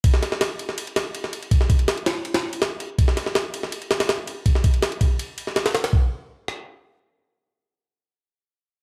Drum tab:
RD |x-x-x-x-xxx-x-xx|x-xxxxx-xx-xx-x-|x-x-x-x-xxxxx-x-|x-xxxxx-x-x-xxxx|
SD |-oooo--o--o--o--|-o--o-o--o--o---|-oooo--o--ooo---|-o--o------ooooo|
BD |o---------------|o-o-------------|o---------------|o-o---o---------|

RD |----------------|----------------|
SD |------r---------|----------------|
BD |o---------------|----------------|